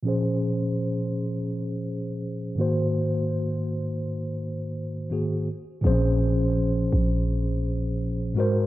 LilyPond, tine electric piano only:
\new Staff \with { instrumentName = "Tine electric piano" } { \time 4/4 \key bes \minor \tempo 4 = 83 <bes, f des' aes' c''>2.~ <bes, f des' aes' c''>8 <aes, ees bes ges' c''>8~ | <aes, ees bes ges' c''>2. <aes, ees bes ges' aes'>8 r8 | <bes, f c' des' aes' c''>2.~ <bes, f c' des' aes' c''>8 <aes, aes ges' bes' c''>8 | }